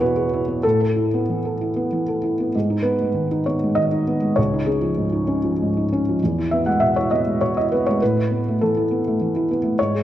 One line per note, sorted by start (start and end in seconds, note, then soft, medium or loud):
0.00 0.61 E2 medium
0.00 0.02 B2 soft
0.00 0.26 B2 soft
0.00 0.48 B3 soft
0.00 0.33 E4 soft
0.00 0.16 G#4 medium
0.00 0.64 B4 medium
0.00 0.66 C#5 loud
0.16 0.41 G#4 soft
0.33 0.58 E4 soft
0.48 0.64 B3 soft
0.63 2.51 A2 medium
0.63 0.80 A4 medium
0.81 1.06 A4 soft
0.96 1.22 E4 soft
1.14 1.38 B3 soft
1.30 1.54 E3 soft
1.45 1.70 A4 soft
1.61 1.86 E4 soft
1.76 2.01 B3 soft
1.93 2.17 E3 soft
2.08 2.33 A4 soft
2.23 2.48 E4 soft
2.40 2.55 B3 soft
2.55 4.34 G#2 soft
2.70 2.94 D#4 soft
2.82 3.09 B3 soft
2.82 3.45 B4 medium
3.01 3.25 G#3 soft
3.14 3.39 D#3 soft
3.31 3.55 D#4 soft
3.46 3.71 B3 soft
3.46 3.77 C#5 medium
3.63 3.87 G#3 soft
3.75 4.01 D#3 soft
3.75 4.37 D#5 medium
3.92 4.16 D#4 soft
4.07 4.31 B3 soft
4.22 4.37 G#3 soft
4.36 6.15 C#2 soft
4.36 4.67 C#5 medium
4.54 4.77 D#4 soft
4.66 4.91 C#4 soft
4.66 5.88 G#4 medium
4.81 5.06 F3 soft
4.97 5.21 G#2 soft
5.12 5.37 D#4 soft
5.28 5.52 C#4 soft
5.44 5.68 F3 soft
5.62 5.85 G#2 soft
5.77 6.00 D#4 soft
5.93 6.15 C#4 soft
6.09 6.22 F3 soft
6.24 7.99 E2 soft
6.38 6.61 E4 soft
6.51 6.76 B3 soft
6.51 6.66 E5 medium
6.66 6.90 G#3 soft
6.66 6.81 F#5 medium
6.80 7.05 B2 soft
6.80 6.95 E5 medium
6.96 7.21 E4 soft
6.96 7.11 C#5 medium
7.11 7.36 B3 soft
7.11 7.41 D#5 medium
7.26 7.50 G#3 soft
7.41 7.65 B2 soft
7.41 7.56 C#5 medium
7.57 7.81 E4 soft
7.57 7.71 D#5 medium
7.72 7.96 B3 soft
7.72 7.86 B4 medium
7.87 8.02 G#3 soft
7.87 8.01 C#5 medium
8.02 9.75 A2 soft
8.02 8.60 B4 medium
8.17 8.40 E4 soft
8.31 8.54 B3 soft
8.48 8.70 A3 soft
8.61 8.85 E3 soft
8.61 9.49 A4 medium
8.77 8.99 E4 soft
8.91 9.14 B3 soft
9.07 9.29 A3 soft
9.22 9.44 E3 soft
9.36 9.58 E4 soft
9.51 9.73 B3 soft
9.63 9.78 A3 soft
9.79 10.03 G#2 soft
9.79 10.03 C#5 medium
9.94 10.03 G#4 soft